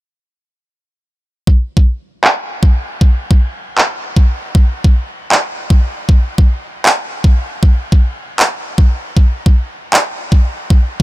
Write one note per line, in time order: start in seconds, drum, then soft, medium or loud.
1.47 kick loud
1.77 kick loud
2.24 clap medium
2.63 kick loud
3.01 kick loud
3.31 kick loud
3.78 clap medium
4.17 kick loud
4.55 kick loud
4.84 kick loud
5.32 clap medium
5.70 kick loud
6.09 kick loud
6.38 kick loud
6.86 clap medium
7.24 kick loud
7.63 kick loud
7.92 kick loud
8.40 clap medium
8.78 kick loud
9.17 kick loud
9.46 kick loud
9.93 clap medium
10.32 kick loud
10.70 kick loud